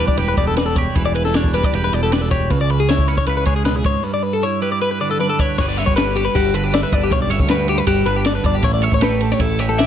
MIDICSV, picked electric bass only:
0, 0, Header, 1, 2, 480
1, 0, Start_track
1, 0, Tempo, 383877
1, 1194, Time_signature, 4, 2, 24, 8
1, 12335, End_track
2, 0, Start_track
2, 0, Title_t, "Picked electric bass"
2, 0, Program_c, 0, 34
2, 217, Note_on_c, 0, 28, 78
2, 426, Note_off_c, 0, 28, 0
2, 461, Note_on_c, 0, 28, 76
2, 1079, Note_off_c, 0, 28, 0
2, 1193, Note_on_c, 0, 28, 81
2, 2013, Note_off_c, 0, 28, 0
2, 2163, Note_on_c, 0, 28, 79
2, 2367, Note_off_c, 0, 28, 0
2, 2404, Note_on_c, 0, 28, 80
2, 3130, Note_off_c, 0, 28, 0
2, 3130, Note_on_c, 0, 37, 85
2, 3947, Note_off_c, 0, 37, 0
2, 4090, Note_on_c, 0, 37, 79
2, 4295, Note_off_c, 0, 37, 0
2, 4323, Note_on_c, 0, 37, 72
2, 4940, Note_off_c, 0, 37, 0
2, 6984, Note_on_c, 0, 31, 90
2, 7286, Note_off_c, 0, 31, 0
2, 7339, Note_on_c, 0, 31, 79
2, 7846, Note_off_c, 0, 31, 0
2, 7941, Note_on_c, 0, 31, 97
2, 8547, Note_off_c, 0, 31, 0
2, 8659, Note_on_c, 0, 31, 100
2, 8859, Note_off_c, 0, 31, 0
2, 8896, Note_on_c, 0, 35, 89
2, 9096, Note_off_c, 0, 35, 0
2, 9103, Note_on_c, 0, 31, 88
2, 9241, Note_on_c, 0, 38, 93
2, 9260, Note_off_c, 0, 31, 0
2, 9750, Note_off_c, 0, 38, 0
2, 9838, Note_on_c, 0, 31, 87
2, 10044, Note_off_c, 0, 31, 0
2, 10069, Note_on_c, 0, 31, 83
2, 10480, Note_off_c, 0, 31, 0
2, 10548, Note_on_c, 0, 31, 94
2, 10756, Note_off_c, 0, 31, 0
2, 10788, Note_on_c, 0, 33, 96
2, 11096, Note_off_c, 0, 33, 0
2, 11152, Note_on_c, 0, 33, 85
2, 11659, Note_off_c, 0, 33, 0
2, 11745, Note_on_c, 0, 33, 101
2, 12335, Note_off_c, 0, 33, 0
2, 12335, End_track
0, 0, End_of_file